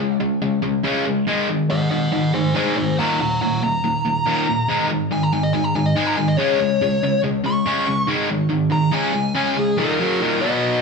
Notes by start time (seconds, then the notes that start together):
0.00 C#3 G#3
0.20 C#3 G#3
0.42 C#3 G#3
0.62 C#3 G#3
0.84 C#3 G#3 C#4
1.06 C#3 G#3
1.27 G#2 D#3 G#3
1.50 G#2 D#3
1.70 G#2 D#3 D#5 F#5
1.90 G#2 D#3 D#5 F#5
2.12 G#2 D#3 D#5 F#5
2.34 G#2 D#3 C5 G#5
2.55 G#2 D#3 G#3 C5 G#5
2.77 G#2 D#3 C5 G#5
2.98 D#2 A#2 D#3 F#5 A#5
3.20 D#2 A#2 F#5 A#5
3.41 D#2 A#2 F#5 A#5
3.62 D#2 A#2 A#5
3.84 D#2 A#2
4.05 D#2 A#2
4.25 D#2 A#2 D#3
4.47 D#2 A#2
4.68 G#2 D#3 G#3
4.89 G#2 D#3
5.11 G#2 D#3 G#5
5.23 A#5
5.32 G#2 D#3 G#5
5.43 D#5
5.53 G#2 D#3 G#5
5.64 A#5
5.75 G#2 D#3 G#5
5.86 D#5
5.96 G#2 D#3 G#3 G#5
6.07 A#5
6.17 G#2 D#3 G#5
6.28 D#5
6.37 C#3 G#3 C#4 C#5
6.60 C#3 G#3
6.81 C#3 G#3
7.03 C#3 G#3
7.23 C#3 G#3
7.44 C#3 G#3 C#6
7.66 C#3 G#3 C#4
7.87 C#3 G#3
8.07 G#2 D#3 G#3
8.30 G#2 D#3
8.50 G#2 D#3
8.71 G#2 D#3 A#5
8.92 C#3 G#3 C#4 G#5
9.13 C#3 G#3
9.35 C#3 G#3 C#4
9.56 C#3 G#3 G#4
9.77 D#2 A#2 D#3 A#4
10.00 F#2 C#3 F#3
10.20 D#2 A#2 D#3
10.41 B2 F#3 B3 D#5